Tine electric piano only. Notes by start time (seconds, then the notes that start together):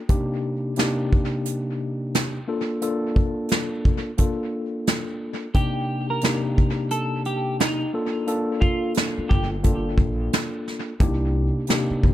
0.09 C3 A#3 D4 D#4 G4
0.77 C3 A#3 D4 D#4 G4
2.48 A#3 D4 F4 A4
2.82 A#3 D4 F4 A4
4.18 A#3 D4 F4 A4
5.54 C3 A#3 D4 D#4 G4
6.23 C3 A#3 D4 D#4 G4
7.93 A#3 D4 F4 A4
8.27 A#3 D4 F4 A4
9.63 A#3 D4 F4 A4
11.00 C3 A#3 D4 D#4 G4
11.68 C3 A#3 D4 D#4 G4